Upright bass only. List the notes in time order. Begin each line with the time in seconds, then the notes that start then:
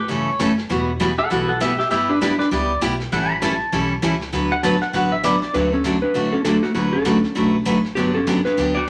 0.09 G1
0.40 F#1
0.70 E1
1.31 B1
1.91 G1
2.52 C#2
2.82 B1
3.12 A1
3.72 B1
4.03 C#2
4.33 D2
4.94 A1
5.54 D2
6.15 A1
6.75 D2
7.36 B1
7.67 A1
7.97 G1
8.58 D2